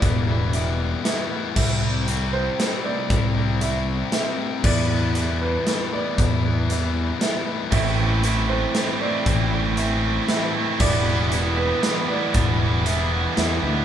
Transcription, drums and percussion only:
0.02 kick, closed hi-hat
0.53 closed hi-hat
1.05 snare, closed hi-hat
1.56 kick, crash
2.08 closed hi-hat
2.60 snare, closed hi-hat
3.10 kick, closed hi-hat
3.61 closed hi-hat
4.12 snare, closed hi-hat
4.64 kick, crash
5.15 closed hi-hat
5.67 snare, closed hi-hat
6.18 kick, closed hi-hat
6.70 closed hi-hat
7.21 snare, closed hi-hat
7.72 kick, crash
8.23 closed hi-hat
8.75 snare, closed hi-hat
9.26 kick, closed hi-hat
9.77 closed hi-hat
10.29 snare, closed hi-hat
10.80 kick, crash
11.32 closed hi-hat
11.83 snare, closed hi-hat
12.34 kick, closed hi-hat
12.86 closed hi-hat
13.37 snare, closed hi-hat

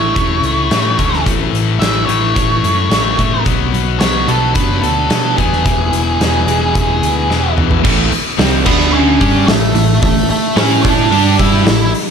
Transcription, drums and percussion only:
0.16 kick, closed hi-hat
0.43 closed hi-hat
0.71 snare, closed hi-hat
0.99 kick, closed hi-hat
1.13 snare
1.26 kick, closed hi-hat
1.55 closed hi-hat
1.82 snare, closed hi-hat
2.09 closed hi-hat
2.36 kick, closed hi-hat
2.64 closed hi-hat
2.91 snare, closed hi-hat
3.19 kick, closed hi-hat
3.46 kick, closed hi-hat
3.74 closed hi-hat
4.00 snare, closed hi-hat
4.28 closed hi-hat
4.55 kick, closed hi-hat
4.83 closed hi-hat
5.10 snare, closed hi-hat
5.38 kick, closed hi-hat
5.53 snare
5.66 kick, closed hi-hat
5.93 closed hi-hat
6.21 snare, closed hi-hat
6.48 closed hi-hat
6.75 kick, closed hi-hat
7.03 closed hi-hat
7.31 snare
7.58 mid tom
7.71 floor tom
7.85 kick, crash
8.12 open hi-hat
8.39 snare, open hi-hat
8.66 kick, crash
8.80 snare
9.21 kick, open hi-hat
9.48 snare, open hi-hat
9.75 open hi-hat
10.02 kick, open hi-hat
10.30 open hi-hat
10.57 snare, open hi-hat
10.84 kick, open hi-hat
11.12 open hi-hat
11.39 kick, open hi-hat
11.66 snare, open hi-hat
11.94 open hi-hat

